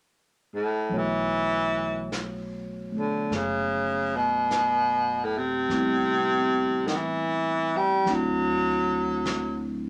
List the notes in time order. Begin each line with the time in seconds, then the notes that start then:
0.55 A2
0.89 B1 F#3 A3 B3, brush sweep
0.94 E3 F#4 C#5
2.12 brush sweep, snare, hi-hat pedal
2.92 A3 B3
2.98 D3
3.30 F#1, brush sweep, snare
3.35 C#3
4.16 B2
4.51 brush sweep, snare, hi-hat pedal
5.24 A2
5.38 C3
5.69 A1 G3 A3 B3 C4, brush sweep, snare
5.73 E4
6.87 D#3, brush sweep, snare, hi-hat pedal
6.95 E3
7.76 G3
8.05 D2 F#3 A3 C4 D4, brush sweep, snare
8.09 F#3 E4
9.25 brush sweep, snare, hi-hat pedal